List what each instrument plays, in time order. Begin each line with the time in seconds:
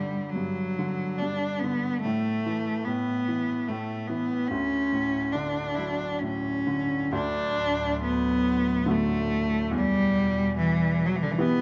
Already playing: upright piano G2 D3, cello G3
0.31 cello F#3
0.36 upright piano G2
0.79 upright piano D3
1.18 upright piano G2, cello D4
1.60 cello B3
1.64 upright piano D3
2.02 upright piano A2, cello A3
2.46 upright piano E3
2.85 upright piano A2, cello B3
3.28 upright piano E3
3.68 upright piano A2, cello A3
4.07 upright piano E3, cello B3
4.48 upright piano D2, cello C#4
4.92 upright piano A2
5.33 upright piano D3, cello D4
5.75 upright piano F#3, cello D4 E4
6.19 upright piano A2, cello C#4
6.27 cello C#4
6.67 upright piano D3
7.12 upright piano D2, ambient pad D2 A2 F#3, cello D4
8.04 cello B3
8.86 upright piano D3 F#3 A3
8.91 cello A3
9.71 upright piano E2, ambient pad E2 B2 G3
9.75 cello G3
10.58 cello E3
11.06 cello F#3
11.16 cello E3
11.23 cello D3
11.31 cello E3
11.38 upright piano E3 G3 B3, cello B3